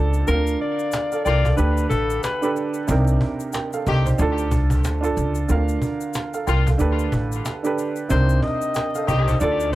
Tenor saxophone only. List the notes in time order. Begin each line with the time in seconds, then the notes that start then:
0.28 A#4
0.61 D5
1.25 D5
1.57 B4
1.89 A4
2.23 B4
8.11 C5
8.43 D#5
9.07 D#5
9.41 D5